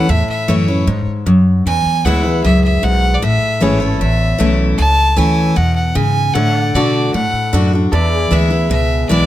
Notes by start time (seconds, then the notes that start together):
Already playing: A4 C#5 E5 F#5
0.09 E2 A2 E5
0.29 E5, muted upright bass stroke
0.48 F#2 E3 A3 C#4 E4 C#5
0.68 C#4 E4
0.87 G#2
1.07 muted upright bass stroke
1.26 F#2
1.66 E2 G#5
1.85 muted upright bass stroke
2.05 D2 E3 G#3 B3 E4 G#4 C#5 E5 F#5
2.23 B3 E4
2.32 B4
2.44 C#2 F#2 E5
2.65 E5
2.83 B1 G#2 F#5
3.14 D5
3.22 A1 A2 E5
3.61 G#1 E3 A3 C#4 E4 G#4 B4 C#5 E5
3.80 C#4 E4 A4
3.89 C#5
4.01 A1 E2 E5
4.38 B1 E3 A3 C#4 E4
4.78 C#2 A2 A5
5.16 D2 E3 A3 C#4 E4 G#5
5.56 E2 B2 F#5
5.76 F#5
5.95 G#2 C#3 G#5
6.34 A2 D3 A4 C#5 E5 F#5
6.56 D5
6.62 F#5
6.74 B2 D3 A3 D4 F#4 D5
7.14 A2 F#5
7.33 muted upright bass stroke
7.53 F#2 D3 A3 D4 F#4
7.73 D4 F#4
7.92 E2 A4 B4 D5 E5
8.12 G#4
8.31 D2 E3 G#3 B3 E4 E5
8.50 B3 E4
8.70 C#2 B2 E5
9.09 B1 E3 G#3 B3 E4 D5